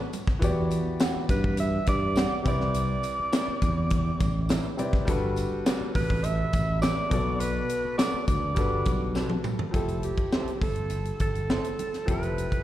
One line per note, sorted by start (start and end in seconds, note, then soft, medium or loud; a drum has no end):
0.00 0.13 B4 medium
0.13 closed hi-hat medium
0.13 tambourine soft
0.13 high conga medium
0.27 kick medium
0.27 snare soft
0.39 0.79 E2 loud
0.39 2.40 E3 medium
0.39 2.41 B3 medium
0.39 2.42 F#4 medium
0.39 2.42 G4 medium
0.39 kick loud
0.39 closed hi-hat medium
0.39 tambourine soft
0.44 2.43 D5 medium
0.71 closed hi-hat medium
0.71 tambourine medium
0.87 muted fingered electric bass stroke soft
1.00 1.16 G4 medium
1.00 1.17 D5 medium
1.00 1.17 F#5 medium
1.00 snare loud
1.00 closed hi-hat medium
1.00 tambourine medium
1.00 high conga medium
1.16 muted fingered electric bass stroke soft
1.29 1.78 G2 medium
1.29 1.57 B4 medium
1.29 kick medium
1.29 snare soft
1.29 closed hi-hat medium
1.29 tambourine soft
1.44 kick medium
1.57 1.86 E5 loud
1.57 closed hi-hat medium
1.57 tambourine soft
1.57 muted conga soft
1.86 2.24 G2 medium
1.86 2.42 D5 loud
1.86 kick medium
1.86 closed hi-hat medium
1.86 tambourine soft
1.86 muted conga medium
2.16 2.33 G4 medium
2.16 2.33 D5 medium
2.16 2.34 F#5 medium
2.16 snare loud
2.16 closed hi-hat medium
2.16 tambourine medium
2.16 high conga medium
2.43 2.95 C2 loud
2.43 4.73 C3 medium
2.43 4.74 C4 medium
2.43 4.74 E4 medium
2.43 kick loud
2.43 closed hi-hat medium
2.43 tambourine soft
2.43 high conga medium
2.47 4.75 B4 medium
2.47 4.76 D5 loud
2.47 4.76 D5 medium
2.60 snare soft
2.74 closed hi-hat medium
2.74 tambourine soft
2.74 muted conga soft
3.03 closed hi-hat medium
3.03 tambourine medium
3.20 muted fingered electric bass stroke soft
3.32 3.49 E4 medium
3.32 3.49 B4 medium
3.32 3.50 D5 medium
3.32 snare loud
3.32 closed hi-hat loud
3.32 tambourine loud
3.32 high conga medium
3.48 muted fingered electric bass stroke soft
3.62 4.11 E2 medium
3.62 kick medium
3.62 closed hi-hat medium
3.62 tambourine soft
3.62 low conga medium
3.90 kick medium
3.90 closed hi-hat medium
3.90 tambourine soft
3.90 muted conga soft
3.90 low conga medium
4.20 4.57 A1 loud
4.20 kick medium
4.20 closed hi-hat medium
4.20 tambourine soft
4.20 muted conga soft
4.49 4.66 E4 medium
4.49 4.66 B4 medium
4.49 4.67 D5 medium
4.49 snare loud
4.49 closed hi-hat medium
4.49 tambourine medium
4.49 high conga medium
4.77 5.07 C3 medium
4.77 5.07 C4 medium
4.77 5.07 E4 medium
4.77 5.08 B4 medium
4.77 5.08 D5 medium
4.77 closed hi-hat medium
4.77 tambourine soft
4.77 high conga medium
4.93 kick loud
4.93 snare soft
5.05 5.44 G1 loud
5.05 7.06 G3 medium
5.05 7.07 D4 medium
5.05 7.07 F#4 medium
5.05 7.08 A4 medium
5.05 kick loud
5.05 closed hi-hat loud
5.05 tambourine soft
5.05 muted conga soft
5.10 7.09 B4 medium
5.36 closed hi-hat medium
5.36 tambourine medium
5.52 muted fingered electric bass stroke soft
5.66 5.82 F#4 medium
5.66 5.83 B4 medium
5.66 5.83 D5 medium
5.66 snare loud
5.66 closed hi-hat medium
5.66 tambourine loud
5.66 high conga medium
5.81 muted fingered electric bass stroke soft
5.95 6.44 A1 medium
5.95 6.27 B4 loud
5.95 kick medium
5.95 snare soft
5.95 open hi-hat medium
5.95 tambourine soft
6.10 kick medium
6.24 6.82 E5 loud
6.24 closed hi-hat medium
6.24 tambourine soft
6.24 muted conga soft
6.53 6.90 A1 loud
6.53 kick medium
6.53 closed hi-hat medium
6.53 tambourine medium
6.53 muted conga medium
6.82 6.99 F#4 medium
6.82 6.99 B4 medium
6.82 7.42 D5 loud
6.82 7.00 D5 medium
6.82 snare loud
6.82 closed hi-hat medium
6.82 tambourine medium
6.82 high conga medium
7.09 7.60 B1 loud
7.09 8.53 B2 medium
7.09 8.54 B3 medium
7.09 8.54 F#4 medium
7.09 8.55 A4 medium
7.09 kick loud
7.09 closed hi-hat medium
7.09 tambourine soft
7.09 high conga medium
7.14 8.56 D5 medium
7.40 7.98 B4 loud
7.40 closed hi-hat medium
7.40 tambourine soft
7.69 closed hi-hat medium
7.69 tambourine soft
7.85 muted fingered electric bass stroke soft
7.98 8.15 F#4 medium
7.98 8.15 A4 medium
7.98 8.26 D5 medium
7.98 8.16 D5 loud
7.98 snare loud
7.98 closed hi-hat medium
7.98 tambourine medium
7.98 high conga medium
8.14 muted fingered electric bass stroke soft
8.28 8.53 D2 medium
8.28 9.12 D5 medium
8.28 kick medium
8.28 closed hi-hat medium
8.28 tambourine soft
8.28 low conga medium
8.55 8.82 G1 loud
8.55 9.70 G3 medium
8.55 9.71 D4 medium
8.55 9.72 F#4 medium
8.55 9.72 A4 medium
8.55 kick medium
8.55 closed hi-hat medium
8.55 tambourine soft
8.55 muted conga soft
8.55 low conga medium
8.60 9.73 B4 medium
8.85 9.23 B1 medium
8.85 kick medium
8.85 closed hi-hat medium
8.85 tambourine soft
8.85 muted conga soft
9.15 9.32 B3 medium
9.15 9.32 F#4 medium
9.15 9.33 A4 medium
9.15 snare medium
9.15 tambourine medium
9.15 high conga medium
9.30 high tom medium
9.30 high conga soft
9.44 mid tom medium
9.44 tambourine soft
9.44 high conga medium
9.59 floor tom medium
9.71 10.11 F1 medium
9.71 12.03 F3 medium
9.71 12.03 C4 medium
9.71 12.04 E4 medium
9.71 12.04 G4 medium
9.71 10.01 A4 medium
9.71 kick loud
9.71 closed hi-hat medium
9.71 muted conga soft
9.76 12.05 A4 medium
9.88 closed hi-hat soft
10.03 10.58 G4 medium
10.03 closed hi-hat medium
10.17 muted fingered electric bass stroke soft
10.17 kick medium
10.17 closed hi-hat soft
10.33 10.49 E4 medium
10.33 10.49 A4 medium
10.33 10.50 C5 medium
10.33 snare loud
10.33 high conga medium
10.47 muted fingered electric bass stroke soft
10.47 closed hi-hat soft
10.61 11.11 G1 medium
10.61 11.17 A4 medium
10.61 kick medium
10.61 open hi-hat soft
10.61 low conga medium
10.75 closed hi-hat soft
10.90 closed hi-hat medium
10.90 muted conga soft
11.05 closed hi-hat soft
11.19 11.57 G1 medium
11.19 12.11 A4 medium
11.19 kick medium
11.19 closed hi-hat medium
11.19 muted conga soft
11.35 closed hi-hat soft
11.50 11.66 E4 medium
11.50 11.66 A4 medium
11.50 11.67 C5 medium
11.50 snare medium
11.50 high conga medium
11.64 closed hi-hat medium
11.79 closed hi-hat medium
11.79 high conga medium
11.93 snare soft
11.93 closed hi-hat soft
12.06 12.45 F1 medium
12.06 12.63 F3 medium
12.06 12.63 C4 medium
12.06 12.63 E4 medium
12.06 12.63 G4 medium
12.06 12.63 B4 medium
12.06 kick loud
12.06 closed hi-hat medium
12.06 muted conga soft
12.11 12.63 A4 medium
12.23 closed hi-hat soft
12.38 closed hi-hat medium
12.52 muted fingered electric bass stroke soft
12.52 kick medium
12.52 closed hi-hat soft